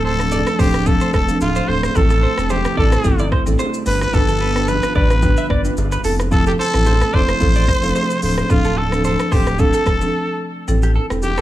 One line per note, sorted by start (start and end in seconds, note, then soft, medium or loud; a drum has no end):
0.00 0.43 D1 loud
0.00 1.92 C3 medium
0.00 1.93 F3 medium
0.00 3.82 A3 medium
0.00 1.93 D4 loud
0.00 low bongo medium
0.05 0.61 A4 loud
0.05 0.14 C5 medium
0.19 0.36 F3 medium
0.19 0.36 C4 medium
0.19 0.36 D4 medium
0.19 0.36 A4 medium
0.19 cross-stick medium
0.19 shaker medium
0.32 0.42 D5 medium
0.32 high bongo medium
0.32 low bongo medium
0.32 low conga medium
0.32 shaker medium
0.47 cross-stick loud
0.47 shaker medium
0.59 0.98 D1 loud
0.59 0.77 F3 medium
0.59 0.77 C4 medium
0.59 0.77 D4 medium
0.59 0.88 G4 loud
0.59 0.77 A4 medium
0.59 0.69 C5 medium
0.59 kick loud
0.59 open hi-hat medium
0.59 low bongo medium
0.59 shaker medium
0.74 cross-stick medium
0.74 high bongo soft
0.74 shaker medium
0.86 1.04 F3 loud
0.86 1.05 C4 medium
0.86 1.05 D4 medium
0.86 1.05 A4 loud
0.86 1.14 A4 loud
0.86 kick medium
0.86 low conga medium
0.86 shaker medium
1.01 1.09 C5 medium
1.01 shaker medium
1.14 1.33 E1 medium
1.14 1.24 A4 medium
1.14 1.39 A4 loud
1.14 kick medium
1.14 cross-stick medium
1.14 shaker medium
1.28 1.45 F3 medium
1.28 1.45 C4 medium
1.28 1.45 D4 medium
1.28 1.45 A4 medium
1.28 low bongo medium
1.28 shaker medium
1.41 1.60 D1 medium
1.41 1.70 F4 loud
1.41 high bongo medium
1.41 shaker medium
1.56 1.64 C5 medium
1.56 shaker medium
1.68 1.88 D1 medium
1.68 1.86 F3 medium
1.68 1.86 C4 medium
1.68 1.86 D4 medium
1.68 1.87 A4 medium
1.68 1.78 C5 medium
1.68 1.84 C5 loud
1.83 1.98 C5 loud
1.83 cross-stick loud
1.83 high bongo medium
1.83 shaker medium
1.95 2.25 A1 loud
1.95 3.85 C3 medium
1.95 2.13 G3 loud
1.95 6.01 G3 medium
1.95 2.14 C4 medium
1.95 2.14 E4 medium
1.95 3.84 E4 loud
1.95 2.14 A4 loud
1.95 2.52 A4 loud
1.95 kick loud
1.95 low conga medium
1.95 shaker medium
2.10 2.19 A4 medium
2.10 shaker medium
2.22 2.33 C5 medium
2.22 low bongo medium
2.37 2.66 E1 medium
2.37 2.54 G3 medium
2.37 2.54 C4 medium
2.37 2.54 E4 medium
2.37 2.54 A4 medium
2.37 cross-stick medium
2.37 shaker medium
2.50 2.78 G4 medium
2.50 2.60 C5 medium
2.50 high bongo medium
2.50 low bongo medium
2.50 low conga medium
2.50 shaker medium
2.65 cross-stick loud
2.65 shaker medium
2.77 2.97 A1 loud
2.77 2.95 G3 medium
2.77 2.95 C4 medium
2.77 2.96 E4 medium
2.77 2.96 A4 medium
2.77 3.28 A4 medium
2.77 2.92 D5 medium
2.77 kick loud
2.77 low bongo medium
2.92 3.00 C5 medium
2.92 cross-stick loud
2.92 high bongo soft
2.92 shaker medium
3.04 3.35 G1 loud
3.04 3.23 G3 loud
3.04 3.23 C4 medium
3.04 3.23 E4 medium
3.04 3.23 A4 loud
3.04 kick medium
3.04 low conga medium
3.04 shaker medium
3.19 3.28 D5 medium
3.19 shaker medium
3.32 3.42 C5 medium
3.32 kick medium
3.32 cross-stick medium
3.46 3.55 A1 medium
3.46 3.63 G3 medium
3.46 3.63 C4 medium
3.46 3.63 E4 medium
3.46 3.63 A4 medium
3.46 low bongo medium
3.46 shaker medium
3.59 3.77 C5 medium
3.59 high bongo medium
3.59 shaker medium
3.74 shaker medium
3.86 4.06 G1 loud
3.86 6.02 D3 medium
3.86 4.04 G3 medium
3.86 6.02 B3 medium
3.86 4.04 D4 medium
3.86 6.02 F4 loud
3.86 4.05 F4 medium
3.86 4.05 B4 medium
3.86 4.01 B4 loud
3.86 open hi-hat medium
3.86 shaker medium
4.01 4.16 B4 loud
4.01 cross-stick loud
4.01 high bongo medium
4.01 shaker medium
4.13 4.80 G1 loud
4.13 4.32 G3 medium
4.13 4.32 D4 medium
4.13 4.32 F4 medium
4.13 4.70 A4 loud
4.13 4.32 B4 loud
4.13 kick loud
4.13 low conga medium
4.13 shaker medium
4.28 4.37 A4 medium
4.28 shaker medium
4.40 4.51 B4 medium
4.40 low bongo medium
4.56 4.72 G3 medium
4.56 4.72 D4 medium
4.56 4.72 F4 medium
4.56 4.72 B4 medium
4.56 cross-stick medium
4.56 shaker medium
4.68 4.78 B4 medium
4.68 4.96 B4 loud
4.68 high bongo medium
4.68 low bongo medium
4.68 low conga medium
4.68 shaker medium
4.83 cross-stick loud
4.83 shaker medium
4.95 5.34 A1 medium
4.95 5.14 G3 medium
4.95 5.14 D4 medium
4.95 5.14 F4 medium
4.95 5.14 B4 medium
4.95 5.47 B4 loud
4.95 5.05 D5 medium
4.95 kick loud
4.95 low bongo medium
5.10 cross-stick loud
5.10 high bongo soft
5.10 shaker medium
5.22 5.41 G3 loud
5.22 5.41 D4 medium
5.22 5.41 F4 medium
5.22 5.41 B4 loud
5.22 kick medium
5.22 low conga medium
5.22 shaker medium
5.37 5.46 E5 medium
5.37 shaker medium
5.50 5.69 G1 medium
5.50 5.60 D5 medium
5.50 kick medium
5.50 cross-stick medium
5.65 5.81 G3 medium
5.65 5.81 D4 medium
5.65 5.81 F4 medium
5.65 5.81 B4 medium
5.65 low bongo medium
5.65 shaker medium
5.77 5.97 G1 medium
5.77 high bongo medium
5.77 shaker medium
5.92 6.00 B4 medium
5.92 shaker medium
6.04 6.54 F1 loud
6.04 10.64 C3 medium
6.04 6.23 F3 medium
6.04 10.64 F3 medium
6.04 10.64 A3 medium
6.04 6.23 C4 medium
6.04 8.20 E4 loud
6.04 6.23 E4 medium
6.04 6.14 A4 medium
6.04 6.23 A4 medium
6.04 open hi-hat medium
6.04 shaker medium
6.20 cross-stick loud
6.20 high bongo medium
6.20 shaker medium
6.31 6.50 F3 loud
6.31 6.50 C4 medium
6.31 6.50 E4 medium
6.31 6.50 A4 loud
6.31 6.46 A4 loud
6.31 kick loud
6.31 low conga medium
6.31 shaker medium
6.46 6.53 G4 medium
6.46 6.55 A4 medium
6.46 shaker medium
6.58 7.16 A4 loud
6.58 6.69 C5 medium
6.58 low bongo soft
6.74 7.02 A1 medium
6.74 6.90 F3 medium
6.74 6.90 C4 medium
6.74 6.90 E4 medium
6.74 6.90 A4 medium
6.74 cross-stick medium
6.74 shaker medium
6.86 6.96 C5 medium
6.86 high bongo medium
6.86 low bongo medium
6.86 low conga medium
6.86 shaker medium
7.01 cross-stick loud
7.01 shaker medium
7.13 7.33 F1 medium
7.13 7.32 F3 medium
7.13 7.32 C4 medium
7.13 7.32 E4 medium
7.13 7.32 A4 medium
7.13 8.23 C5 loud
7.13 7.24 D5 medium
7.13 kick loud
7.13 low bongo medium
7.29 7.37 C5 medium
7.29 cross-stick loud
7.29 high bongo soft
7.29 shaker medium
7.40 7.71 A1 loud
7.40 7.59 F3 loud
7.40 7.59 C4 medium
7.40 7.59 E4 medium
7.40 7.59 A4 loud
7.40 kick loud
7.40 low conga medium
7.40 shaker medium
7.55 7.64 D5 medium
7.55 shaker medium
7.68 7.78 C5 medium
7.68 kick medium
7.68 cross-stick medium
7.83 7.92 F1 medium
7.83 7.99 F3 medium
7.83 7.99 C4 medium
7.83 7.99 E4 medium
7.83 8.00 A4 medium
7.83 low bongo medium
7.83 shaker medium
7.95 8.13 C5 medium
7.95 high bongo medium
7.95 shaker medium
8.10 shaker medium
8.22 8.42 D1 loud
8.22 8.41 F3 medium
8.22 8.41 C4 medium
8.22 10.66 D4 loud
8.22 8.41 D4 medium
8.22 8.41 A4 medium
8.22 8.37 C5 loud
8.22 open hi-hat medium
8.22 shaker medium
8.38 8.52 C5 medium
8.38 cross-stick loud
8.38 high bongo medium
8.38 shaker medium
8.50 9.16 D1 loud
8.50 8.68 F3 loud
8.50 8.68 C4 medium
8.50 8.68 D4 medium
8.50 8.79 F4 loud
8.50 8.68 A4 loud
8.50 kick loud
8.50 low conga medium
8.50 shaker medium
8.65 8.73 A4 medium
8.65 shaker medium
8.76 8.87 A4 medium
8.76 9.05 A4 medium
8.76 low bongo medium
8.92 9.08 F3 medium
8.92 9.08 C4 medium
8.92 9.09 D4 medium
8.92 9.09 A4 medium
8.92 cross-stick medium
8.92 shaker medium
9.04 9.34 A4 medium
9.04 9.14 C5 medium
9.04 high bongo medium
9.04 low conga medium
9.04 shaker medium
9.20 cross-stick loud
9.20 shaker medium
9.32 9.71 D1 loud
9.32 9.50 F3 medium
9.32 9.50 C4 medium
9.32 9.50 D4 medium
9.32 9.61 G4 medium
9.32 9.50 A4 medium
9.32 9.42 C5 medium
9.32 kick loud
9.32 open hi-hat medium
9.32 low bongo medium
9.32 shaker soft
9.47 cross-stick loud
9.47 high bongo soft
9.47 shaker medium
9.58 9.77 F3 loud
9.58 9.77 C4 medium
9.58 9.77 D4 medium
9.58 9.77 A4 loud
9.58 10.41 A4 medium
9.58 kick medium
9.58 low conga medium
9.58 shaker medium
9.73 9.82 A4 medium
9.73 shaker medium
9.86 10.06 E1 loud
9.86 9.96 A4 medium
9.86 kick medium
9.86 cross-stick medium
9.86 shaker medium
10.01 10.13 F3 medium
10.01 10.14 C4 medium
10.01 10.14 D4 medium
10.01 10.14 A4 medium
10.01 low bongo medium
10.01 shaker medium
10.68 10.98 A1 loud
10.68 10.86 G3 medium
10.68 10.86 C4 medium
10.68 10.86 E4 medium
10.68 10.87 A4 loud
10.68 low conga medium
10.68 shaker medium
10.83 10.91 G4 medium
10.83 shaker medium
10.94 11.05 A4 medium
10.94 low bongo medium
11.10 11.38 E1 medium
11.10 11.27 G3 medium
11.10 11.27 C4 medium
11.10 11.27 E4 medium
11.10 11.27 A4 medium
11.10 cross-stick medium
11.10 shaker medium
11.22 11.41 G4 loud
11.22 high bongo medium
11.22 low bongo medium
11.22 low conga medium
11.22 shaker medium
11.38 11.41 A4 medium
11.38 cross-stick medium
11.38 shaker medium